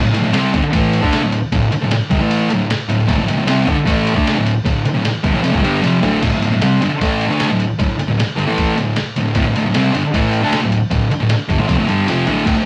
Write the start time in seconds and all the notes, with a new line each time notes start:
0.03 D2 A2
0.13 D2 A2, ride
0.23 D2 A2
0.32 C3 G3 C4, snare, ride
0.54 G2 D3, kick, ride
0.63 muted distorted electric guitar stroke
0.73 A2 E3 A3, kick, ride
0.93 ride
1.02 D3 A3 D4, kick
1.13 snare, ride
1.22 D2 A2
1.32 ride
1.52 D2 A2, kick, ride
1.71 muted distorted electric guitar stroke, ride
1.81 D2 A2
1.91 muted distorted electric guitar stroke, snare, ride
2.10 G2 D3, kick, ride
2.20 A2 E3 A3
2.31 ride
2.50 D2 A2, ride
2.70 snare, ride
2.88 D2 A2, ride
3.07 D2 A2, kick, ride
3.18 D2 A2
3.28 D2 A2, ride
3.37 D2 A2
3.47 C3 G3 C4, snare, ride
3.67 G2 D3, kick, ride
3.76 muted distorted electric guitar stroke
3.85 A2 E3 A3, kick, ride
4.07 ride
4.14 D3 A3 D4, kick
4.27 snare, ride
4.35 D2 A2
4.46 ride
4.64 D2 A2, kick, ride
4.85 muted distorted electric guitar stroke, ride
4.94 D2 A2
5.04 muted distorted electric guitar stroke, snare, ride
5.23 G2 D3, kick, ride
5.34 A2 E3
5.41 F2 C3, ride
5.52 D2 A2, kick
5.62 G2 D3 G3, ride
5.82 F2 C3 F3, snare, ride
6.01 D2 A2 D3, floor tom, ride
6.21 D2 A2, kick, crash, ride
6.32 D2 A2
6.41 D2 A2, ride
6.52 D2 A2
6.62 C3 G3 C4, snare, ride
6.81 G2 D3, ride
6.90 muted distorted electric guitar stroke
7.01 A2 E3 A3, kick, ride
7.21 ride
7.29 D3 A3 D4
7.40 snare, ride
7.49 D2 A2
7.60 ride
7.79 D2 A2, kick, ride
7.98 muted distorted electric guitar stroke, ride
8.08 D2 A2
8.19 muted distorted electric guitar stroke, snare, ride
8.36 G2 D3, ride
8.47 A2 E3 A3
8.58 kick, ride
8.76 D2 A2, ride
8.96 snare, ride
9.16 D2 A2, ride
9.35 D2 A2, kick, ride
9.45 D2 A2
9.56 D2 A2, ride
9.66 D2 A2
9.74 C3 G3 C4, snare, ride
9.93 G2 D3, ride
10.05 muted distorted electric guitar stroke
10.14 A2 E3 A3, kick, ride
10.33 ride
10.42 D3 A3 D4
10.53 snare, ride
10.62 D2 A2
10.72 ride
10.91 D2 A2, kick, ride
11.10 muted distorted electric guitar stroke, ride
11.20 D2 A2
11.29 muted distorted electric guitar stroke, snare, ride
11.48 G2 D3, kick, ride
11.58 A2 E3
11.67 F2 C3, kick, ride
11.78 D2 A2
11.88 G2 D3 G3, ride
12.07 F2 C3 F3, snare, ride
12.26 D2 A2 D3, floor tom, ride
12.45 D2 A2, kick, ride, crash
12.56 D2 A2